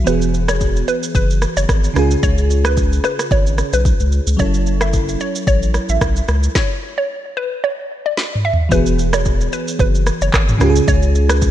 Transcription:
0.04 0.84 E1 loud
0.04 1.91 E3 medium
0.04 1.92 B3 medium
0.04 1.93 F#4 medium
0.04 0.30 B4 medium
0.04 shaker medium
0.09 1.93 G#4 medium
0.22 shaker medium
0.34 shaker medium
0.48 0.59 C#5 medium
0.48 cross-stick loud
0.48 shaker loud
0.61 kick medium
0.61 shaker medium
0.76 shaker medium
0.88 1.01 B4 medium
0.88 shaker medium
1.03 shaker medium
1.15 1.46 F#1 loud
1.15 1.28 B4 medium
1.15 kick loud
1.15 shaker medium
1.30 shaker medium
1.42 cross-stick medium
1.42 shaker medium
1.57 1.66 F#1 medium
1.57 1.67 C#5 medium
1.57 shaker medium
1.69 1.89 G#1 loud
1.69 kick medium
1.69 cross-stick loud
1.69 shaker medium
1.84 shaker medium
1.94 2.16 C#2 loud
1.94 4.07 C#3 medium
1.94 4.08 C#4 medium
1.94 4.09 F4 medium
1.94 cross-stick medium
1.94 shaker soft
1.99 4.09 G#4 medium
2.11 shaker medium
2.23 3.00 C#2 loud
2.23 2.46 C#5 medium
2.23 kick loud
2.23 shaker medium
2.38 shaker medium
2.50 shaker medium
2.65 2.75 B4 medium
2.65 cross-stick loud
2.65 shaker loud
2.77 kick medium
2.77 shaker medium
2.93 shaker medium
3.04 3.17 B4 medium
3.04 cross-stick medium
3.04 shaker medium
3.19 cross-stick loud
3.19 shaker medium
3.31 3.62 G#1 medium
3.31 3.44 C#5 medium
3.31 kick loud
3.31 shaker medium
3.46 shaker medium
3.58 cross-stick medium
3.58 shaker medium
3.73 3.93 B1 loud
3.73 3.84 B4 medium
3.73 shaker medium
3.85 kick medium
3.85 shaker medium
4.00 4.20 C#2 medium
4.00 shaker medium
4.12 shaker soft
4.27 4.36 C#2 medium
4.27 shaker medium
4.37 5.16 F#1 loud
4.37 6.50 F#3 medium
4.37 6.51 C#4 medium
4.37 6.52 E4 medium
4.37 4.62 C#5 medium
4.37 kick loud
4.37 shaker medium
4.42 6.53 A4 medium
4.54 shaker medium
4.67 shaker medium
4.81 4.92 E5 medium
4.81 cross-stick loud
4.81 shaker loud
4.93 kick medium
4.93 shaker medium
5.09 shaker medium
5.20 5.33 C#5 medium
5.20 shaker soft
5.35 shaker medium
5.47 5.79 A1 loud
5.47 5.60 C#5 medium
5.47 kick loud
5.47 shaker medium
5.63 shaker medium
5.74 cross-stick medium
5.74 shaker medium
5.89 5.98 A1 loud
5.89 6.00 E5 medium
5.89 shaker medium
6.01 6.22 B1 medium
6.01 kick medium
6.01 cross-stick loud
6.01 shaker medium
6.16 shaker medium
6.28 6.49 C#2 medium
6.28 cross-stick medium
6.28 shaker soft
6.43 shaker medium
6.55 6.79 C#5 loud
6.55 kick loud
6.55 snare medium
6.98 7.08 C#5 medium
7.37 7.49 B4 medium
7.64 7.76 C#5 medium
8.06 8.16 D5 medium
8.17 snare medium
8.35 mid tom medium
8.45 8.57 E5 medium
8.53 floor tom loud
8.69 9.49 E1 loud
8.69 10.56 E3 medium
8.69 10.56 B3 medium
8.69 10.57 F#4 medium
8.69 8.95 B4 loud
8.69 kick loud
8.69 shaker medium
8.74 10.58 G#4 medium
8.86 shaker medium
8.99 shaker medium
9.13 9.24 C#5 medium
9.13 cross-stick loud
9.13 shaker loud
9.25 kick medium
9.25 shaker medium
9.41 shaker medium
9.53 9.65 B4 medium
9.53 shaker medium
9.68 shaker medium
9.79 10.11 F#1 loud
9.79 9.93 B4 medium
9.79 kick loud
9.79 shaker medium
9.95 shaker medium
10.07 cross-stick medium
10.07 shaker medium
10.21 10.31 F#1 medium
10.21 10.32 C#5 medium
10.21 shaker medium
10.34 10.54 G#1 loud
10.34 kick medium
10.34 cross-stick loud
10.34 clap loud
10.34 shaker medium
10.49 mid tom loud
10.49 shaker medium
10.58 10.81 C#2 loud
10.58 11.51 C#3 medium
10.58 11.51 C#4 medium
10.58 11.51 F4 medium
10.58 cross-stick medium
10.58 shaker medium
10.63 10.69 G4 medium
10.70 11.51 G#4 medium
10.76 shaker loud
10.88 11.51 C#2 loud
10.88 11.11 C#5 loud
10.88 kick loud
10.88 shaker medium
11.03 shaker medium
11.15 shaker medium
11.29 11.40 B4 medium
11.29 cross-stick loud
11.29 shaker loud
11.42 kick medium
11.42 shaker medium

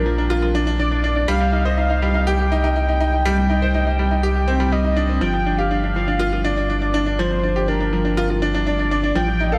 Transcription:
0.00 1.26 A#1 medium
0.00 0.06 F3 loud
0.00 0.18 D4 loud
0.00 0.30 F4 loud
0.00 1.31 G4 medium
0.00 0.55 A#4 medium
0.06 0.13 F3 medium
0.18 0.25 D4 medium
0.30 0.41 F4 loud
0.42 0.49 F4 medium
0.55 0.65 D4 loud
0.67 0.78 D4 loud
0.79 0.90 D4 medium
0.79 1.30 D5 loud
0.91 0.99 D4 medium
1.04 1.14 D4 medium
1.16 1.23 D4 medium
1.28 5.20 C2 medium
1.28 1.39 G3 loud
1.28 1.67 F5 loud
1.40 1.52 G3 medium
1.52 1.64 D#4 medium
1.65 1.72 C5 medium
1.65 1.80 D#5 loud
1.77 1.88 D#4 medium
1.77 2.28 F5 loud
1.90 1.97 D#4 medium
2.02 2.09 G3 medium
2.14 2.21 D#4 medium
2.27 2.38 G4 loud
2.27 4.74 G5 loud
2.39 2.46 G4 medium
2.52 2.62 D#4 loud
2.64 2.74 D#4 medium
2.76 2.87 D#4 medium
2.89 2.95 D#4 medium
3.01 3.11 D#4 loud
3.13 3.20 D#4 medium
3.25 3.36 G3 loud
3.38 3.49 G3 medium
3.50 3.61 D#4 medium
3.62 3.69 C5 medium
3.74 3.85 D#4 medium
3.87 3.94 D#4 medium
3.99 4.06 G3 medium
4.11 4.18 D#4 medium
4.23 4.34 G4 loud
4.35 4.43 G4 medium
4.48 4.55 C4 loud
4.60 4.71 G3 medium
4.72 4.84 G3 medium
4.72 5.21 D#5 loud
4.84 4.96 D#4 medium
4.96 5.04 D4 medium
5.09 5.21 C4 medium
5.21 9.13 G1 medium
5.21 5.32 F3 loud
5.21 5.59 G5 loud
5.34 5.46 F3 medium
5.46 5.58 D4 medium
5.58 5.66 G4 medium
5.58 5.95 F5 loud
5.71 5.82 D4 medium
5.84 5.91 D4 medium
5.96 6.03 F3 medium
5.96 6.47 F5 loud
6.08 6.15 D4 medium
6.19 6.31 F4 loud
6.33 6.40 F4 medium
6.45 6.56 D4 loud
6.45 7.21 D5 loud
6.57 6.68 D4 medium
6.70 6.80 D4 medium
6.82 6.89 D4 medium
6.94 7.05 D4 loud
7.06 7.13 D4 medium
7.19 7.30 F3 loud
7.19 7.70 C5 loud
7.31 7.43 F3 medium
7.43 7.55 D4 medium
7.56 7.63 G4 medium
7.68 7.79 D4 medium
7.68 8.42 A#4 medium
7.81 7.87 D4 medium
7.93 8.00 F3 medium
8.05 8.12 D4 medium
8.17 8.28 F4 loud
8.30 8.37 F4 medium
8.42 8.53 D4 loud
8.54 8.65 D4 medium
8.67 8.78 D4 medium
8.67 9.12 D5 loud
8.79 8.86 D4 medium
8.91 9.02 D4 medium
9.04 9.10 D4 medium
9.15 9.58 A1 medium
9.15 9.27 F3 loud
9.15 9.55 G5 loud
9.28 9.40 F3 medium
9.40 9.52 D#4 medium
9.52 9.58 A4 medium
9.52 9.58 F5 loud

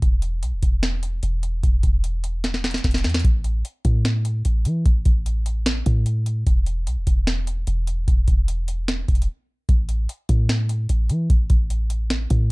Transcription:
0.02 0.44 E1 loud
0.02 kick loud
0.02 closed hi-hat medium
0.22 closed hi-hat medium
0.43 0.54 B1 loud
0.43 closed hi-hat medium
0.53 0.62 E1 loud
0.63 1.21 E1 loud
0.63 kick medium
0.63 closed hi-hat medium
0.83 snare loud
0.83 closed hi-hat medium
1.03 closed hi-hat medium
1.23 1.62 E1 loud
1.23 closed hi-hat medium
1.43 closed hi-hat medium
1.64 1.83 E1 loud
1.64 kick loud
1.64 closed hi-hat medium
1.83 2.80 E1 loud
1.83 kick loud
1.83 closed hi-hat medium
2.04 closed hi-hat medium
2.24 closed hi-hat medium
2.44 snare medium
2.44 closed hi-hat medium
2.54 snare medium
2.64 snare medium
2.64 closed hi-hat soft
2.71 snare medium
2.71 closed hi-hat medium
2.78 closed hi-hat medium
2.84 3.06 E1 loud
2.84 kick medium
2.84 snare medium
2.84 closed hi-hat medium
2.91 snare medium
2.91 closed hi-hat medium
2.98 closed hi-hat medium
3.04 3.24 E2 loud
3.04 snare loud
3.04 closed hi-hat soft
3.04 open hi-hat medium
3.09 closed hi-hat medium
3.14 snare loud
3.14 closed hi-hat medium
3.19 closed hi-hat medium
3.25 3.63 A1 loud
3.25 kick loud
3.25 closed hi-hat medium
3.44 closed hi-hat medium
3.65 closed hi-hat medium
3.85 4.43 A2 loud
3.85 kick loud
3.85 closed hi-hat medium
4.05 snare loud
4.05 closed hi-hat medium
4.25 closed hi-hat medium
4.45 4.67 A1 loud
4.45 closed hi-hat medium
4.65 4.85 E3 loud
4.65 closed hi-hat medium
4.86 5.05 A1 loud
4.86 kick loud
4.86 closed hi-hat medium
5.05 5.83 A1 loud
5.05 kick loud
5.05 closed hi-hat medium
5.26 closed hi-hat medium
5.46 closed hi-hat medium
5.66 snare loud
5.66 closed hi-hat medium
5.86 6.44 A2 loud
5.86 kick medium
5.86 closed hi-hat medium
6.06 closed hi-hat medium
6.26 closed hi-hat medium
6.47 6.88 E1 loud
6.47 kick loud
6.47 closed hi-hat medium
6.66 closed hi-hat medium
6.87 6.99 B1 loud
6.87 closed hi-hat medium
6.97 7.07 E1 loud
7.07 7.65 E1 loud
7.07 kick medium
7.07 closed hi-hat medium
7.27 snare loud
7.27 closed hi-hat medium
7.47 closed hi-hat medium
7.67 8.06 E1 loud
7.67 closed hi-hat medium
7.87 closed hi-hat medium
8.08 8.27 E1 loud
8.08 kick loud
8.08 closed hi-hat medium
8.28 9.05 E1 loud
8.28 kick loud
8.28 closed hi-hat medium
8.48 closed hi-hat medium
8.68 closed hi-hat medium
8.88 snare loud
8.88 closed hi-hat medium
9.08 9.28 E1 loud
9.08 kick medium
9.08 closed hi-hat soft
9.15 closed hi-hat medium
9.22 closed hi-hat medium
9.69 10.08 A1 loud
9.69 kick loud
9.69 closed hi-hat medium
9.89 closed hi-hat medium
10.09 closed hi-hat medium
10.29 10.87 A2 loud
10.29 kick medium
10.29 closed hi-hat medium
10.49 snare loud
10.49 closed hi-hat medium
10.69 closed hi-hat medium
10.89 11.11 A1 loud
10.89 closed hi-hat medium
11.10 11.29 E3 loud
11.10 closed hi-hat medium
11.30 11.49 A1 loud
11.30 kick loud
11.30 closed hi-hat medium
11.50 12.27 A1 loud
11.50 kick medium
11.50 closed hi-hat medium
11.70 closed hi-hat medium
11.90 closed hi-hat medium
12.10 snare loud
12.10 closed hi-hat medium
12.30 12.52 A2 loud
12.30 kick medium
12.30 closed hi-hat medium

